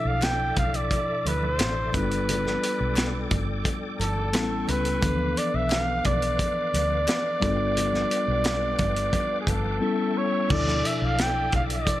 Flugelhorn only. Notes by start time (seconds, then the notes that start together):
0.07 F5
0.24 G5
0.58 F5
0.76 D5
1.27 B4
1.45 C5
1.95 B4
4.00 A4
4.69 B4
5.38 D5
5.55 E5
5.72 F5
6.06 D5
9.41 G#4
9.49 A4
10.18 C#5
10.52 D5
10.87 E5
10.97 E5
11.05 F5
11.22 G5
11.56 F5
11.74 D5